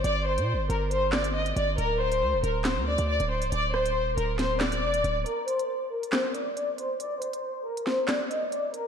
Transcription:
0.04 0.39 G1 loud
0.04 0.21 D5 loud
0.04 closed hi-hat medium
0.26 0.67 C5 medium
0.38 0.55 A#2 loud
0.38 closed hi-hat medium
0.54 0.69 G1 loud
0.69 1.53 G1 loud
0.69 0.86 A#4 medium
0.69 closed hi-hat medium
0.91 1.08 C5 loud
0.91 closed hi-hat medium
1.12 1.29 D5 medium
1.12 snare loud
1.12 clap medium
1.24 closed hi-hat medium
1.35 1.51 D#5 medium
1.46 closed hi-hat medium
1.56 1.77 G1 loud
1.56 1.73 D5 medium
1.56 closed hi-hat medium
1.78 2.23 D1 loud
1.78 1.95 A#4 loud
1.78 closed hi-hat medium
2.01 2.41 C5 loud
2.12 closed hi-hat medium
2.22 2.35 D2 loud
2.33 2.43 D1 loud
2.43 2.78 D1 loud
2.43 2.60 A#4 medium
2.43 closed hi-hat medium
2.64 2.82 C5 medium
2.64 snare loud
2.64 clap loud
2.64 closed hi-hat medium
2.77 2.97 D2 loud
2.87 3.03 D5 medium
2.98 3.19 D2 loud
2.98 closed hi-hat medium
3.09 3.25 D5 loud
3.20 3.43 D1 loud
3.20 closed hi-hat medium
3.31 3.47 C5 medium
3.42 3.52 C1 loud
3.42 closed hi-hat medium
3.52 3.97 D1 loud
3.52 3.69 D5 loud
3.52 closed hi-hat medium
3.74 4.15 C5 loud
3.74 cross-stick medium
3.86 closed hi-hat medium
3.96 4.16 D#1 loud
4.17 4.84 D1 loud
4.17 4.34 A#4 medium
4.17 closed hi-hat medium
4.38 4.55 C5 medium
4.38 snare medium
4.38 closed hi-hat medium
4.60 5.22 D5 medium
4.60 snare loud
4.60 clap medium
4.72 closed hi-hat medium
4.83 4.96 F1 loud
4.94 5.04 D1 loud
4.94 closed hi-hat medium
5.04 5.25 D1 loud
5.04 closed hi-hat medium
5.26 5.43 A#4 loud
5.26 closed hi-hat medium
5.47 5.88 C5 medium
5.47 closed hi-hat medium
5.59 closed hi-hat medium
5.91 6.08 A#4 medium
6.03 closed hi-hat medium
6.12 6.30 C5 medium
6.12 snare loud
6.12 clap loud
6.34 6.51 D5 medium
6.34 closed hi-hat medium
6.56 6.73 D5 medium
6.56 closed hi-hat medium
6.78 6.95 C5 medium
6.78 closed hi-hat medium
7.00 7.17 D5 loud
7.00 closed hi-hat medium
7.22 7.63 C5 medium
7.22 closed hi-hat medium
7.33 closed hi-hat medium
7.65 7.82 A#4 medium
7.77 closed hi-hat medium
7.87 8.03 C5 medium
7.87 snare medium
8.08 8.25 D5 medium
8.08 snare loud
8.08 clap medium
8.08 closed hi-hat medium
8.31 8.47 D#5 medium
8.31 closed hi-hat medium
8.52 8.69 D5 medium
8.52 closed hi-hat medium
8.74 8.87 A#4 loud
8.74 closed hi-hat medium

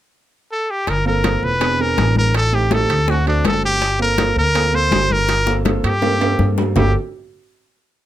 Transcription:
0.52 0.72 A4 medium
0.70 0.90 G4 medium
0.87 1.39 G1 medium
0.87 1.06 A#4 medium
0.87 high bongo medium
0.87 high conga soft
0.87 high timbale medium
1.05 1.18 A#3 medium
1.05 1.19 C4 medium
1.05 1.19 F4 medium
1.05 1.19 A4 medium
1.05 1.45 A#4 medium
1.05 high conga soft
1.24 1.50 A#3 medium
1.24 1.50 C4 medium
1.24 1.50 F4 medium
1.24 1.50 A4 medium
1.24 high bongo soft
1.24 high conga medium
1.24 high timbale medium
1.43 1.94 E1 medium
1.43 1.83 B4 medium
1.43 high conga soft
1.60 1.73 B3 medium
1.60 1.74 C4 medium
1.60 1.74 D4 medium
1.60 1.74 G#4 medium
1.60 high bongo medium
1.60 high conga soft
1.60 high timbale medium
1.79 2.30 B3 medium
1.79 2.31 C4 medium
1.79 2.31 D4 medium
1.79 2.31 G#4 medium
1.79 2.17 A#4 medium
1.79 high conga soft
1.97 2.83 A1 medium
1.97 high bongo medium
1.97 low bongo medium
1.97 high conga medium
1.97 high timbale medium
2.16 2.34 A#4 medium
2.16 high conga medium
2.34 2.56 A4 medium
2.34 high bongo medium
2.34 high timbale medium
2.52 2.65 A3 medium
2.52 2.65 C4 medium
2.52 2.66 D#4 medium
2.52 2.66 G4 medium
2.52 2.75 G4 medium
2.52 high bongo soft
2.52 high conga soft
2.71 2.96 A3 medium
2.71 2.97 C4 medium
2.71 2.97 D#4 medium
2.71 2.97 G4 medium
2.71 3.11 A4 loud
2.71 high bongo medium
2.71 high conga medium
2.71 high timbale medium
2.89 3.40 D2 medium
2.89 high bongo soft
2.89 high conga soft
2.89 high timbale medium
3.07 3.20 A3 medium
3.07 3.21 C4 medium
3.07 3.21 D4 medium
3.07 3.21 F#4 medium
3.07 3.27 F#4 medium
3.07 high bongo medium
3.07 high conga soft
3.26 3.77 A3 medium
3.26 3.78 C4 medium
3.26 3.78 D4 medium
3.26 3.44 D4 medium
3.26 3.78 F#4 medium
3.26 high conga soft
3.26 high timbale medium
3.44 4.30 G1 medium
3.44 3.63 A4 medium
3.44 high bongo medium
3.44 low bongo medium
3.44 high conga medium
3.44 high timbale medium
3.63 3.98 G4 loud
3.63 high bongo soft
3.81 high bongo medium
3.81 high conga soft
3.81 high timbale medium
3.99 4.12 A#3 medium
3.99 4.12 C4 medium
3.99 4.13 F4 medium
3.99 4.13 A4 medium
3.99 4.35 A#4 medium
3.99 high conga soft
4.18 4.44 A#3 medium
4.18 4.44 C4 medium
4.18 4.44 F4 medium
4.18 4.44 A4 medium
4.18 high bongo medium
4.18 high conga medium
4.18 high timbale medium
4.36 4.87 D2 medium
4.36 4.76 A#4 loud
4.36 high conga soft
4.55 4.68 A#3 medium
4.55 4.68 C4 medium
4.55 4.68 F4 medium
4.55 4.68 A4 medium
4.55 high bongo medium
4.55 high conga soft
4.55 high timbale medium
4.73 5.24 A#3 medium
4.73 5.25 C4 medium
4.73 5.25 F4 medium
4.73 5.25 A4 medium
4.73 5.14 C5 loud
4.73 high conga soft
4.92 5.78 G1 medium
4.92 high bongo medium
4.92 low bongo medium
4.92 high conga medium
4.92 high timbale medium
4.92 low timbale medium
5.10 5.58 A#4 loud
5.10 high conga medium
5.28 high bongo medium
5.28 high conga soft
5.28 high timbale medium
5.46 5.59 A#3 medium
5.46 5.60 C4 medium
5.46 5.60 F4 medium
5.46 5.60 A4 medium
5.46 high bongo medium
5.46 high conga soft
5.65 5.91 A#3 medium
5.65 5.91 C4 medium
5.65 5.91 F4 medium
5.65 5.91 A4 medium
5.65 low bongo medium
5.65 high conga medium
5.65 high timbale medium
5.84 6.35 G2 medium
5.84 6.54 G4 medium
5.84 high conga soft
5.84 high timbale medium
6.02 6.15 A#3 medium
6.02 6.15 C4 medium
6.02 6.15 F4 medium
6.02 6.15 A4 medium
6.02 low bongo medium
6.02 high conga soft
6.02 high timbale medium
6.20 6.72 A#3 medium
6.20 6.72 C4 medium
6.20 6.73 F4 medium
6.20 6.73 A4 medium
6.20 high conga soft
6.20 high timbale medium
6.39 6.72 G2 medium
6.39 low bongo medium
6.39 high conga medium
6.58 low bongo medium
6.58 low timbale medium
6.76 6.93 G1 loud
6.76 6.93 A#3 medium
6.76 6.93 C4 medium
6.76 6.93 F4 medium
6.76 6.94 G4 medium
6.76 6.93 A4 medium
6.76 low bongo medium
6.76 low conga loud
6.76 low timbale medium

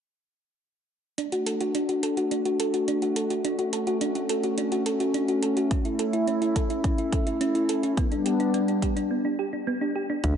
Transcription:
1.18 7.93 A3 medium
1.18 3.42 D4 medium
1.18 1.28 D4 medium
1.18 5.67 F#4 medium
1.18 closed hi-hat medium
1.32 1.46 F#4 medium
1.32 closed hi-hat soft
1.46 1.53 A4 medium
1.46 closed hi-hat medium
1.61 1.71 F#4 medium
1.61 closed hi-hat soft
1.75 1.81 D4 loud
1.75 closed hi-hat medium
1.89 1.95 F#4 medium
1.89 closed hi-hat soft
2.03 2.16 A4 medium
2.03 closed hi-hat medium
2.17 2.27 F#4 medium
2.17 closed hi-hat soft
2.31 2.45 D4 medium
2.31 closed hi-hat medium
2.45 2.59 F#4 medium
2.45 closed hi-hat soft
2.60 2.70 A4 medium
2.60 closed hi-hat medium
2.74 2.84 F#4 medium
2.74 closed hi-hat soft
2.88 2.94 D4 loud
2.88 closed hi-hat medium
3.02 3.16 F#4 medium
3.02 closed hi-hat soft
3.16 3.27 A4 medium
3.16 closed hi-hat medium
3.30 3.41 F#4 medium
3.30 closed hi-hat soft
3.45 7.93 C#4 medium
3.45 3.55 D4 loud
3.45 closed hi-hat medium
3.59 3.72 F#4 medium
3.59 closed hi-hat soft
3.73 3.79 A4 medium
3.73 closed hi-hat medium
3.87 3.97 F#4 medium
3.87 closed hi-hat soft
4.01 4.07 D4 medium
4.01 closed hi-hat medium
4.15 4.22 F#4 medium
4.15 closed hi-hat soft
4.29 4.43 A4 medium
4.29 closed hi-hat medium
4.43 4.54 F#4 medium
4.43 closed hi-hat soft
4.58 4.71 D4 medium
4.58 closed hi-hat medium
4.72 4.85 F#4 medium
4.72 closed hi-hat soft
4.86 4.96 A4 medium
4.86 closed hi-hat medium
5.00 5.10 F#4 medium
5.00 closed hi-hat soft
5.14 5.21 D4 loud
5.14 closed hi-hat medium
5.28 5.42 F#4 medium
5.28 closed hi-hat soft
5.43 5.53 A4 medium
5.43 closed hi-hat medium
5.57 5.67 F#4 medium
5.57 closed hi-hat soft
5.71 5.81 C#4 loud
5.71 7.95 E4 medium
5.71 kick loud
5.71 closed hi-hat medium
5.85 5.99 E4 medium
5.85 closed hi-hat soft
5.99 6.05 A4 medium
5.99 closed hi-hat medium
6.13 6.24 E4 loud
6.13 closed hi-hat soft
6.27 6.34 C#4 loud
6.27 closed hi-hat medium
6.42 6.48 E4 medium
6.42 closed hi-hat soft
6.56 6.69 A4 medium
6.56 kick medium
6.56 closed hi-hat medium
6.70 6.80 E4 medium
6.70 closed hi-hat soft
6.84 6.98 C#4 medium
6.84 kick loud
6.84 closed hi-hat medium
6.98 7.12 E4 medium
6.98 closed hi-hat soft
7.12 7.23 A4 medium
7.12 kick loud
7.12 closed hi-hat medium
7.27 7.37 E4 medium
7.27 closed hi-hat soft
7.41 7.47 C#4 loud
7.41 closed hi-hat medium
7.55 7.68 E4 medium
7.55 closed hi-hat soft
7.69 7.79 A4 medium
7.69 closed hi-hat medium
7.83 7.93 E4 medium
7.83 closed hi-hat soft
7.97 9.09 G3 medium
7.97 8.08 B3 loud
7.97 9.09 B3 medium
7.97 9.09 D4 medium
7.97 kick loud
7.97 closed hi-hat medium
8.12 8.25 D4 medium
8.12 closed hi-hat soft
8.26 8.32 G4 medium
8.26 closed hi-hat medium
8.40 8.50 D4 loud
8.40 closed hi-hat soft
8.54 8.60 B3 loud
8.54 closed hi-hat medium
8.68 8.74 D4 medium
8.68 closed hi-hat soft
8.82 8.96 G4 medium
8.82 kick medium
8.82 closed hi-hat medium
8.96 9.07 D4 medium
8.96 closed hi-hat soft
9.11 9.24 B3 medium
9.25 9.38 D4 medium
9.39 9.49 G4 medium
9.53 9.63 D4 medium
9.67 9.73 B3 loud
9.81 9.95 D4 medium
9.96 10.06 G4 medium
10.10 10.20 D4 medium
10.23 10.34 D2 loud
10.23 10.37 F#3 medium
10.23 10.37 A3 medium
10.23 10.37 D4 medium
10.23 10.34 D4 loud
10.23 kick loud
10.23 closed hi-hat medium

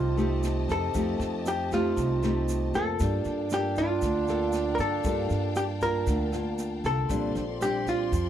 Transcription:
0.00 0.65 C2 medium
0.00 0.92 C3 medium
0.00 0.13 A3 soft
0.00 2.99 C4 medium
0.00 0.14 D#4 medium
0.00 0.73 F4 medium
0.00 0.14 G4 medium
0.00 2.96 G4 medium
0.00 2.96 D#5 medium
0.00 2.96 A5 medium
0.17 0.90 A3 medium
0.17 0.90 D#4 medium
0.17 0.91 G4 medium
0.17 snare soft
0.17 shaker soft
0.43 cross-stick medium
0.43 snare soft
0.43 shaker medium
0.69 0.93 F2 medium
0.69 1.48 A4 medium
0.69 kick soft
0.69 snare soft
0.69 shaker soft
0.94 1.18 F2 medium
0.94 1.95 F3 medium
0.94 1.67 A3 medium
0.94 1.67 D#4 medium
0.94 1.68 G4 medium
0.94 kick medium
0.94 snare soft
0.94 shaker medium
1.19 1.93 F2 medium
1.19 snare soft
1.19 shaker soft
1.46 1.71 G4 medium
1.46 cross-stick medium
1.46 snare soft
1.46 shaker medium
1.72 2.19 A3 medium
1.72 2.19 D#4 medium
1.72 2.78 F4 medium
1.72 2.19 G4 medium
1.72 kick soft
1.72 snare soft
1.72 shaker soft
1.97 2.70 C2 medium
1.97 2.97 C3 medium
1.97 kick medium
1.97 snare soft
1.97 shaker medium
2.23 2.70 A3 medium
2.23 2.70 D#4 medium
2.23 2.70 G4 medium
2.23 cross-stick medium
2.23 snare soft
2.23 shaker soft
2.48 snare soft
2.48 shaker medium
2.74 2.98 F2 medium
2.74 3.47 A#3 medium
2.74 3.47 F4 medium
2.74 3.48 A4 medium
2.74 kick soft
2.74 snare soft
2.74 shaker soft
2.99 3.24 G2 loud
2.99 4.00 G3 soft
2.99 6.80 D4 loud
2.99 7.06 F5 medium
2.99 7.06 G5 medium
2.99 7.06 A5 medium
2.99 kick medium
2.99 cross-stick medium
2.99 snare soft
2.99 shaker medium
3.25 3.98 G2 medium
3.25 snare soft
3.25 shaker soft
3.50 4.24 A#3 soft
3.50 4.24 F4 soft
3.50 3.79 G4 medium
3.50 4.25 A4 medium
3.50 cross-stick medium
3.50 snare soft
3.50 shaker medium
3.76 4.76 F4 medium
3.76 kick soft
3.76 snare soft
3.76 shaker soft
4.02 4.75 D2 medium
4.02 5.02 D3 medium
4.02 kick medium
4.02 snare soft
4.02 shaker medium
4.27 5.01 A#3 medium
4.27 5.01 F4 medium
4.27 5.01 A4 medium
4.27 snare soft
4.27 shaker soft
4.52 cross-stick medium
4.52 snare soft
4.52 shaker medium
4.75 5.03 G2 medium
4.75 4.80 A#4 medium
4.75 shaker soft
4.79 5.53 A4 medium
4.79 kick soft
4.79 snare soft
5.04 5.28 G2 loud
5.04 6.05 G3 medium
5.04 5.77 A#3 medium
5.04 5.78 F4 medium
5.04 5.78 A4 medium
5.04 kick medium
5.04 snare soft
5.04 shaker medium
5.30 6.03 G2 medium
5.30 snare soft
5.30 shaker soft
5.55 5.64 G4 medium
5.55 cross-stick medium
5.55 snare soft
5.55 shaker medium
5.81 6.29 A#3 medium
5.81 6.29 F4 medium
5.81 6.81 A#4 loud
5.81 kick soft
5.81 snare soft
5.81 shaker soft
6.07 6.80 D2 medium
6.07 7.07 D3 medium
6.07 kick medium
6.07 snare soft
6.07 shaker medium
6.32 7.06 A#3 medium
6.32 7.06 F4 medium
6.32 cross-stick medium
6.32 snare soft
6.32 shaker soft
6.58 snare soft
6.58 shaker medium
6.84 7.08 C2 medium
6.84 7.62 A4 medium
6.84 kick soft
6.84 snare soft
6.84 shaker soft
7.09 7.33 A#1 loud
7.09 8.10 A#2 medium
7.09 7.43 G3 soft
7.09 8.29 C4 medium
7.09 7.43 C4 medium
7.09 7.43 D4 medium
7.09 8.29 G4 medium
7.09 8.29 D5 medium
7.09 8.29 C6 medium
7.09 kick medium
7.09 cross-stick medium
7.09 snare soft
7.09 shaker medium
7.35 8.08 A#1 medium
7.35 snare soft
7.35 shaker soft
7.61 8.12 G3 medium
7.61 8.13 C4 soft
7.61 8.13 D4 medium
7.61 7.88 G4 medium
7.61 cross-stick medium
7.61 snare soft
7.61 shaker medium
7.86 8.29 F4 medium
7.86 kick soft
7.86 snare soft
7.86 shaker soft
8.12 8.29 F2 medium
8.12 8.29 F3 medium
8.12 kick medium
8.12 snare soft
8.12 shaker medium

